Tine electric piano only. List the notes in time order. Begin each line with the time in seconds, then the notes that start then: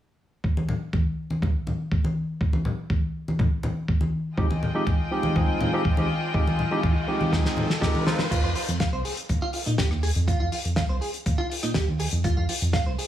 4.37 F3 G#3 C4 D#4 G4
4.75 F3 G#3 C4 D#4 G4
5.11 F3 G#3 C4 D#4 G4
5.36 F3 G#3 C4 D#4 G#4
5.73 F3 G#3 C4 D#4 G4
5.97 F3 G#3 C4 D#4 G4
6.34 F3 G#3 C4 D#4 G4
6.71 F3 G#3 C4 D#4 G4
7.07 F3 G#3 C4 D#4 G4
7.32 F3 G#3 C4 D#4 G#4
7.81 F3 G#3 C4 D#4 G4
8.06 F3 G#3 C4 D#4 F4